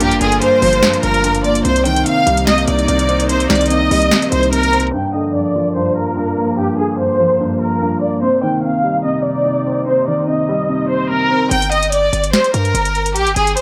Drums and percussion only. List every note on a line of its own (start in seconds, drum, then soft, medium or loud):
0.00 closed hi-hat medium
0.11 closed hi-hat medium
0.21 closed hi-hat medium
0.32 closed hi-hat medium
0.42 closed hi-hat medium
0.62 open hi-hat medium
0.73 closed hi-hat medium
0.83 snare loud
0.83 closed hi-hat medium
0.93 closed hi-hat medium
1.03 closed hi-hat medium
1.14 closed hi-hat soft
1.24 closed hi-hat medium
1.35 closed hi-hat medium
1.44 closed hi-hat soft
1.55 closed hi-hat medium
1.65 closed hi-hat medium
1.76 closed hi-hat medium
1.85 closed hi-hat medium
1.96 closed hi-hat medium
2.06 closed hi-hat medium
2.27 closed hi-hat medium
2.37 closed hi-hat medium
2.47 snare loud
2.47 closed hi-hat medium
2.58 closed hi-hat medium
2.68 closed hi-hat medium
2.79 closed hi-hat soft
2.88 closed hi-hat medium
2.99 closed hi-hat medium
3.09 closed hi-hat soft
3.20 closed hi-hat medium
3.29 closed hi-hat medium
3.40 closed hi-hat medium
3.50 snare loud
3.50 closed hi-hat medium
3.55 closed hi-hat medium
3.61 closed hi-hat medium
3.66 closed hi-hat medium
3.70 closed hi-hat medium
3.91 open hi-hat medium
4.02 closed hi-hat medium
4.11 snare loud
4.11 closed hi-hat medium
4.22 closed hi-hat medium
4.32 closed hi-hat medium
4.43 closed hi-hat soft
4.53 closed hi-hat medium
4.63 closed hi-hat medium
4.73 closed hi-hat soft
4.80 closed hi-hat soft
4.87 closed hi-hat soft
4.94 closed hi-hat medium
5.00 closed hi-hat medium
5.07 closed hi-hat medium
11.51 closed hi-hat medium
11.62 closed hi-hat medium
11.72 closed hi-hat medium
11.83 closed hi-hat medium
11.92 closed hi-hat medium
12.13 closed hi-hat medium
12.24 closed hi-hat medium
12.33 snare loud
12.33 closed hi-hat medium
12.44 closed hi-hat medium
12.54 closed hi-hat medium
12.65 closed hi-hat soft
12.75 closed hi-hat medium
12.85 closed hi-hat medium
12.95 closed hi-hat soft
13.06 closed hi-hat medium
13.16 closed hi-hat medium
13.27 closed hi-hat medium
13.36 closed hi-hat medium
13.47 closed hi-hat medium
13.57 closed hi-hat medium